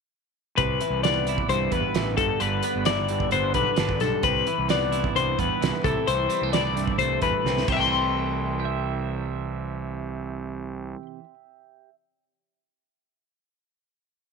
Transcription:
0.57 0.76 C2 medium
0.57 0.81 C3 medium
0.57 1.03 B4 medium
0.57 kick loud
0.57 closed hi-hat medium
0.81 1.94 E3 medium
0.81 closed hi-hat medium
0.90 1.39 C2 medium
1.03 1.72 B3 medium
1.03 1.49 D5 medium
1.03 snare medium
1.03 closed hi-hat medium
1.27 2.19 E4 medium
1.27 closed hi-hat medium
1.38 kick medium
1.48 1.68 C2 loud
1.48 2.15 G2 medium
1.48 1.72 C5 medium
1.48 closed hi-hat medium
1.72 1.81 E2 medium
1.72 2.64 B3 medium
1.72 2.17 B4 medium
1.72 kick medium
1.72 closed hi-hat medium
1.94 2.17 A1 medium
1.94 2.15 E3 medium
1.94 snare medium
1.94 closed hi-hat medium
2.17 2.27 G1 medium
2.17 3.09 G2 medium
2.17 2.40 A4 medium
2.17 kick medium
2.17 closed hi-hat medium
2.40 2.60 G1 medium
2.40 3.55 D3 medium
2.40 2.86 B4 medium
2.40 closed hi-hat medium
2.63 3.31 B3 medium
2.63 closed hi-hat medium
2.75 3.23 G1 medium
2.85 4.02 E4 medium
2.85 3.32 D5 medium
2.85 snare loud
2.85 closed hi-hat medium
3.08 3.98 G2 medium
3.08 closed hi-hat medium
3.20 kick medium
3.31 3.51 G1 medium
3.31 3.98 B3 medium
3.31 3.54 C5 medium
3.31 closed hi-hat medium
3.54 3.64 B1 medium
3.54 4.47 D3 medium
3.54 4.00 B4 medium
3.54 kick medium
3.54 closed hi-hat medium
3.76 4.01 G1 medium
3.76 3.99 D4 medium
3.76 snare loud
3.76 closed hi-hat medium
3.89 kick medium
4.00 4.10 B1 medium
4.00 4.21 G2 medium
4.00 4.24 A4 medium
4.00 snare soft
4.00 closed hi-hat medium
4.23 4.42 C2 medium
4.23 4.46 C3 medium
4.23 4.69 B4 medium
4.23 kick loud
4.23 closed hi-hat medium
4.47 5.61 E3 medium
4.47 closed hi-hat medium
4.58 5.06 C2 medium
4.69 5.38 B3 medium
4.69 5.16 D5 medium
4.69 snare medium
4.69 closed hi-hat medium
4.92 5.86 E4 medium
4.92 closed hi-hat medium
5.04 kick medium
5.15 5.34 C2 medium
5.15 5.81 G2 medium
5.15 5.39 C5 medium
5.15 closed hi-hat medium
5.38 5.48 E2 medium
5.38 5.82 B3 medium
5.38 5.84 B4 medium
5.38 kick medium
5.38 closed hi-hat medium
5.61 5.71 C2 medium
5.61 5.84 E3 medium
5.61 snare medium
5.61 closed hi-hat medium
5.84 5.94 C2 medium
5.84 6.07 C3 medium
5.84 6.06 E3 soft
5.84 6.29 A3 medium
5.84 7.45 C4 medium
5.84 6.53 E4 medium
5.84 6.07 A4 medium
5.84 kick medium
5.84 closed hi-hat medium
6.07 6.27 C2 medium
6.07 7.21 E3 medium
6.07 6.53 C5 medium
6.07 closed hi-hat medium
6.29 6.43 G3 medium
6.29 closed hi-hat medium
6.41 6.90 C2 medium
6.41 6.99 A3 soft
6.53 7.69 E4 medium
6.53 6.98 D5 medium
6.53 snare loud
6.53 closed hi-hat medium
6.76 7.65 G2 medium
6.76 closed hi-hat medium
6.88 kick medium
6.98 7.18 C2 medium
6.98 7.66 A3 medium
6.98 7.22 C5 medium
6.98 closed hi-hat medium
7.22 7.31 E2 medium
7.22 7.66 E3 medium
7.22 7.68 B4 medium
7.22 kick medium
7.22 closed hi-hat medium
7.44 7.67 C2 medium
7.44 7.66 C4 soft
7.44 snare soft
7.58 snare medium
7.68 10.93 C2 medium
7.68 11.19 C3 medium
7.68 7.72 C5 medium
7.68 kick medium
7.68 crash medium
7.72 11.24 E3 medium
7.72 7.80 E5 medium
7.77 8.59 A3 medium
7.77 11.02 G5 medium
7.77 11.06 C6 medium
7.84 11.34 C4 soft
7.89 8.65 E4 soft
8.60 11.89 G4 medium
8.65 11.95 E5 medium

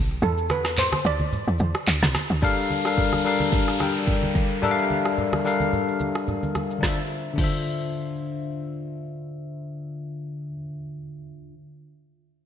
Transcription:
0.00 0.20 B1 medium
0.10 shaker medium
0.22 1.01 E2 loud
0.22 0.51 A4 medium
0.22 low conga medium
0.22 shaker medium
0.38 shaker medium
0.49 0.79 B4 loud
0.49 cross-stick loud
0.49 high conga medium
0.49 shaker medium
0.64 cross-stick medium
0.64 snare medium
0.64 shaker medium
0.77 1.06 C5 medium
0.77 clap loud
0.77 low conga medium
0.77 shaker medium
0.92 cross-stick loud
0.92 high conga medium
0.92 shaker medium
1.05 1.30 D2 loud
1.05 2.12 D5 loud
1.05 shaker loud
1.20 high conga medium
1.20 shaker medium
1.33 low conga medium
1.33 shaker medium
1.48 1.59 E2 medium
1.48 shaker medium
1.59 1.74 E2 medium
1.59 high conga medium
1.59 shaker loud
1.75 cross-stick loud
1.75 shaker medium
1.87 2.02 D2 loud
1.87 clap medium
1.87 shaker medium
2.02 2.14 C2 loud
2.02 snare medium
2.02 high conga medium
2.02 shaker medium
2.15 cross-stick loud
2.15 snare medium
2.15 open hi-hat medium
2.15 high conga medium
2.15 shaker loud
2.30 2.42 D2 loud
2.30 shaker medium
2.42 2.76 G3 loud
2.42 2.76 D4 loud
2.42 2.76 A4 loud
2.42 2.77 A#4 loud
2.42 2.77 F5 loud
2.42 kick loud
2.42 downlifter medium
2.42 low conga medium
2.42 shaker medium
2.58 shaker medium
2.69 high conga medium
2.69 shaker medium
2.85 3.17 G3 medium
2.85 3.18 D4 medium
2.85 3.18 A4 medium
2.85 3.18 A#4 medium
2.85 3.19 F5 loud
2.85 cross-stick medium
2.85 shaker soft
2.97 kick medium
2.97 low conga medium
2.97 shaker medium
3.12 cross-stick medium
3.12 high conga medium
3.12 shaker medium
3.24 3.70 G3 medium
3.24 3.70 D4 medium
3.24 3.70 A4 medium
3.24 3.71 A#4 medium
3.24 3.71 F5 loud
3.24 shaker medium
3.40 high conga medium
3.40 shaker medium
3.52 kick loud
3.52 low conga medium
3.52 shaker medium
3.68 cross-stick medium
3.68 shaker medium
3.79 4.47 G3 medium
3.79 4.47 D4 medium
3.79 4.48 A4 medium
3.79 4.48 A#4 medium
3.79 4.48 G5 medium
3.79 cross-stick medium
3.79 high conga medium
3.79 shaker loud
3.95 shaker medium
4.07 kick medium
4.07 low conga medium
4.07 shaker medium
4.23 high conga medium
4.23 shaker medium
4.35 kick medium
4.35 high conga medium
4.35 shaker loud
4.50 shaker soft
4.62 5.29 G3 loud
4.62 5.30 D4 loud
4.62 5.30 A4 loud
4.62 5.30 A#4 loud
4.62 4.71 E5 loud
4.62 low conga medium
4.62 shaker medium
4.71 5.34 F5 loud
4.78 shaker medium
4.90 high conga medium
4.90 shaker medium
5.05 cross-stick medium
5.05 shaker soft
5.18 low conga medium
5.18 shaker medium
5.33 cross-stick medium
5.33 high conga medium
5.33 shaker soft
5.45 6.34 G3 medium
5.45 6.34 D4 medium
5.45 6.34 A4 medium
5.45 6.35 A#4 medium
5.45 6.35 F5 loud
5.45 shaker medium
5.60 high conga medium
5.60 shaker medium
5.73 low conga medium
5.73 shaker medium
5.88 shaker soft
6.00 high conga medium
6.00 shaker medium
6.15 cross-stick medium
6.15 shaker soft
6.27 low conga medium
6.27 shaker medium
6.43 high conga medium
6.43 shaker medium
6.55 cross-stick medium
6.55 high conga medium
6.55 shaker loud
6.71 shaker soft
6.78 6.97 D3 medium
6.78 6.98 D4 medium
6.83 7.00 F4 medium
6.83 7.01 C5 medium
6.83 kick loud
6.83 snare medium
6.83 high conga medium
6.89 7.02 E5 medium
7.33 10.47 D3 medium
7.33 10.48 D4 medium
7.38 10.49 F4 medium
7.38 10.51 C5 medium
7.38 kick loud
7.38 crash medium
7.38 high conga medium
7.44 10.52 E5 medium

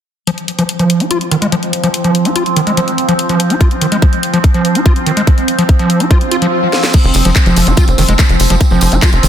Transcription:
0.27 0.30 F3 loud
0.27 6.93 F3 medium
0.27 6.93 C4 medium
0.27 closed hi-hat medium
0.38 closed hi-hat soft
0.48 closed hi-hat medium
0.59 0.64 F3 medium
0.59 closed hi-hat medium
0.69 closed hi-hat medium
0.79 1.02 F3 medium
0.79 closed hi-hat soft
0.90 closed hi-hat medium
1.00 1.05 F#4 loud
1.00 closed hi-hat soft
1.11 1.18 F4 medium
1.11 closed hi-hat medium
1.21 closed hi-hat soft
1.31 1.37 D#3 medium
1.31 closed hi-hat medium
1.42 1.47 G#3 medium
1.42 closed hi-hat medium
1.52 1.55 F3 loud
1.52 closed hi-hat medium
1.63 closed hi-hat soft
1.73 closed hi-hat medium
1.84 1.89 F3 medium
1.84 closed hi-hat medium
1.94 closed hi-hat medium
2.04 2.27 F3 medium
2.04 closed hi-hat soft
2.15 closed hi-hat medium
2.25 2.30 F#4 loud
2.25 closed hi-hat medium
2.36 2.43 F4 medium
2.36 closed hi-hat medium
2.46 closed hi-hat soft
2.56 2.62 D#3 medium
2.56 closed hi-hat medium
2.67 2.72 G#3 medium
2.67 closed hi-hat soft
2.77 2.80 F3 loud
2.77 closed hi-hat medium
2.88 closed hi-hat soft
2.98 closed hi-hat medium
3.09 3.14 F3 medium
3.09 closed hi-hat soft
3.19 closed hi-hat medium
3.29 3.52 F3 medium
3.29 closed hi-hat soft
3.40 closed hi-hat medium
3.50 3.55 F#4 loud
3.50 closed hi-hat medium
3.61 3.68 F4 medium
3.61 kick loud
3.61 closed hi-hat medium
3.71 closed hi-hat soft
3.81 3.87 D#3 medium
3.81 closed hi-hat medium
3.92 3.97 G#3 medium
3.92 closed hi-hat medium
4.02 4.05 F3 loud
4.02 kick loud
4.02 closed hi-hat medium
4.13 closed hi-hat soft
4.23 closed hi-hat medium
4.34 4.39 F3 medium
4.34 closed hi-hat soft
4.44 kick loud
4.44 closed hi-hat medium
4.54 4.77 F3 medium
4.54 closed hi-hat soft
4.65 closed hi-hat medium
4.75 4.80 F#4 loud
4.75 closed hi-hat medium
4.86 4.93 F4 medium
4.86 kick loud
4.86 closed hi-hat medium
4.96 closed hi-hat soft
5.06 5.12 D#3 medium
5.06 closed hi-hat medium
5.17 5.22 G#3 medium
5.17 closed hi-hat medium
5.27 5.30 F3 loud
5.27 kick loud
5.27 closed hi-hat medium
5.38 closed hi-hat soft
5.48 closed hi-hat medium
5.59 5.64 F3 medium
5.59 closed hi-hat soft
5.69 kick loud
5.69 closed hi-hat medium
5.79 6.02 F3 medium
5.79 closed hi-hat soft
5.90 closed hi-hat medium
6.00 6.05 F#4 loud
6.00 closed hi-hat soft
6.11 6.18 F4 medium
6.11 kick loud
6.11 closed hi-hat medium
6.11 swell medium
6.21 closed hi-hat soft
6.31 6.37 F4 medium
6.31 closed hi-hat medium
6.42 6.47 F3 medium
6.42 closed hi-hat medium
6.73 snare medium
6.84 snare medium
6.93 9.28 F3 medium
6.93 6.97 F3 loud
6.93 9.28 C4 medium
6.93 kick loud
6.93 closed hi-hat medium
6.93 crash loud
6.93 tambourine medium
7.04 7.12 F1 medium
7.04 tambourine soft
7.14 7.22 F1 loud
7.14 open hi-hat loud
7.14 tambourine medium
7.25 7.32 F1 medium
7.25 7.30 F3 medium
7.25 closed hi-hat medium
7.25 tambourine soft
7.36 kick loud
7.36 clap loud
7.36 closed hi-hat medium
7.36 tambourine medium
7.46 7.53 F1 medium
7.46 7.68 F3 medium
7.46 closed hi-hat soft
7.46 tambourine soft
7.56 7.64 F1 loud
7.56 open hi-hat loud
7.56 tambourine medium
7.67 7.74 F1 loud
7.67 7.72 F#4 loud
7.67 closed hi-hat medium
7.67 tambourine soft
7.77 7.85 F4 medium
7.77 kick loud
7.77 closed hi-hat medium
7.77 tambourine medium
7.88 7.95 F1 medium
7.88 closed hi-hat soft
7.88 tambourine soft
7.98 8.05 F1 loud
7.98 8.03 D#3 medium
7.98 open hi-hat loud
7.98 tambourine medium
8.09 8.16 F1 medium
8.09 8.14 G#3 medium
8.09 closed hi-hat medium
8.09 tambourine soft
8.19 8.22 F3 loud
8.19 kick loud
8.19 clap loud
8.19 closed hi-hat medium
8.19 tambourine medium
8.29 8.37 F1 medium
8.29 closed hi-hat soft
8.29 tambourine soft
8.40 8.47 F1 loud
8.40 open hi-hat medium
8.40 tambourine medium
8.50 8.57 F1 medium
8.50 8.55 F3 medium
8.50 closed hi-hat medium
8.50 tambourine soft
8.60 kick loud
8.60 closed hi-hat medium
8.60 tambourine soft
8.70 8.78 F1 medium
8.70 8.93 F3 medium
8.70 tambourine soft
8.81 8.89 F1 loud
8.81 open hi-hat loud
8.81 tambourine medium
8.92 8.99 F1 medium
8.92 8.97 F#4 loud
8.92 closed hi-hat medium
8.92 tambourine soft
9.02 9.10 F4 medium
9.02 kick loud
9.02 clap loud
9.02 closed hi-hat medium
9.02 tambourine medium
9.12 9.20 F1 medium
9.12 closed hi-hat soft
9.12 tambourine soft
9.23 9.28 F1 loud
9.23 9.28 D#3 medium
9.23 open hi-hat medium
9.23 tambourine medium

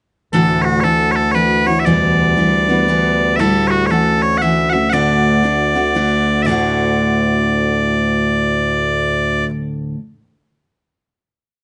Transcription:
0.33 0.84 D2 medium
0.33 9.45 D2 medium
0.33 0.84 A2 medium
0.33 0.83 E3 medium
0.33 0.83 A3 medium
0.33 0.84 D4 medium
0.33 0.84 F#4 medium
0.33 0.62 A4 medium
0.62 0.80 F#4 medium
0.62 0.65 C#5 medium
0.80 1.34 E3 soft
0.80 1.34 A3 soft
0.80 1.11 A4 medium
0.80 0.84 C#5 medium
0.85 1.36 D4 soft
0.85 1.35 F#4 medium
1.11 1.16 C#5 medium
1.16 1.31 A4 medium
1.31 1.67 E3 soft
1.31 1.67 A3 medium
1.31 1.67 B4 medium
1.31 1.35 C#5 medium
1.36 1.66 D4 medium
1.36 1.65 F#4 medium
1.66 1.85 E3 soft
1.66 1.86 A3 soft
1.66 1.86 D4 soft
1.66 1.86 F#4 soft
1.66 1.80 C#5 medium
1.80 1.85 E5 medium
1.85 2.37 E2 medium
1.85 2.38 B2 medium
1.85 2.36 E3 medium
1.85 2.36 G3 medium
1.85 2.37 B3 medium
1.85 2.37 D4 medium
1.85 3.36 D5 medium
2.37 2.69 E3 soft
2.37 2.69 G3 medium
2.37 2.68 B3 medium
2.37 2.67 D4 soft
2.68 2.87 E3 soft
2.68 2.88 G3 soft
2.68 2.88 B3 soft
2.68 2.88 D4 medium
2.88 3.39 E3 medium
2.88 3.39 G3 medium
2.88 3.40 B3 medium
2.88 3.40 D4 medium
3.36 3.91 A2 medium
3.36 3.90 D3 medium
3.36 3.91 G3 medium
3.36 3.91 A3 medium
3.36 3.67 A4 medium
3.36 3.40 E5 medium
3.40 3.91 E4 medium
3.67 3.86 F#4 medium
3.67 3.71 C#5 medium
3.86 4.40 E3 medium
3.86 3.91 C#5 medium
3.91 4.42 A3 soft
3.91 4.41 C#4 soft
3.91 4.43 F#4 medium
3.91 4.22 A4 medium
4.22 4.38 C#5 medium
4.38 4.74 E3 medium
4.38 4.42 F#5 medium
4.42 4.74 A3 medium
4.42 4.73 C#4 medium
4.42 4.72 F#4 medium
4.42 4.70 E5 medium
4.70 4.92 F#4 soft
4.70 4.90 E5 medium
4.70 4.73 F#5 medium
4.74 4.92 A3 soft
4.74 4.93 C#4 soft
4.90 5.44 D2 medium
4.90 5.44 A2 medium
4.90 5.43 D3 medium
4.90 5.44 A3 medium
4.90 5.44 D4 medium
4.90 5.45 F#4 medium
4.90 6.43 D5 medium
4.90 4.93 F#5 medium
5.43 5.76 D3 medium
5.43 5.75 A3 soft
5.43 5.75 D4 medium
5.43 5.74 F#4 medium
5.75 5.94 D3 soft
5.75 5.95 A3 soft
5.75 5.95 D4 soft
5.75 5.95 F#4 soft
5.95 6.47 D3 medium
5.95 6.49 A3 medium
5.95 6.50 D4 medium
5.95 6.51 F#4 medium
6.43 9.95 D2 medium
6.43 9.96 A2 medium
6.43 9.45 D5 medium
6.43 6.46 E5 medium
6.48 9.98 D3 medium
6.48 9.99 A3 medium
6.48 10.00 D4 medium
6.48 10.01 F#4 medium

